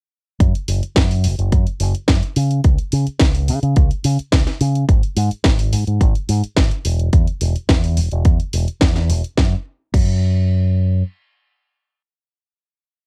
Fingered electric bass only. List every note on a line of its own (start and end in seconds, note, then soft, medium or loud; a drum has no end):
0.40 0.52 F#2 medium
0.68 0.80 F#1 medium
0.83 muted fingered electric bass stroke soft
0.96 1.26 F#2 medium
1.24 1.36 F#1 medium
1.38 1.50 F#1 medium
1.52 1.64 F#2 loud
1.80 1.92 F#1 medium
1.95 muted fingered electric bass stroke soft
2.08 2.20 F#2 medium
2.36 2.59 C#3 medium
2.64 2.76 C#2 medium
2.93 3.05 C#3 medium
3.07 muted fingered electric bass stroke soft
3.20 3.50 C#2 medium
3.49 3.60 C#3 medium
3.63 3.74 C#3 medium
3.76 3.88 C#2 loud
3.91 muted fingered electric bass stroke soft
4.04 4.17 C#3 medium
4.19 muted fingered electric bass stroke soft
4.33 4.45 C#2 medium
4.61 4.84 C#3 medium
4.88 5.01 G#1 medium
5.16 5.29 G#2 medium
5.31 muted fingered electric bass stroke soft
5.45 5.74 G#1 medium
5.73 5.85 G#2 medium
5.87 5.98 G#2 medium
6.01 6.13 G#1 loud
6.29 6.41 G#2 medium
6.44 muted fingered electric bass stroke soft
6.57 6.69 G#1 medium
6.85 7.08 E1 medium
7.13 7.25 E2 medium
7.41 7.53 E1 medium
7.69 7.99 E2 medium
7.97 8.09 E1 medium
8.12 8.23 E1 medium
8.25 8.37 E2 loud
8.40 muted fingered electric bass stroke soft
8.53 8.65 E1 loud
8.81 9.11 E2 loud
9.09 9.21 E1 loud
9.37 9.54 F#2 medium
9.94 11.02 F#2 medium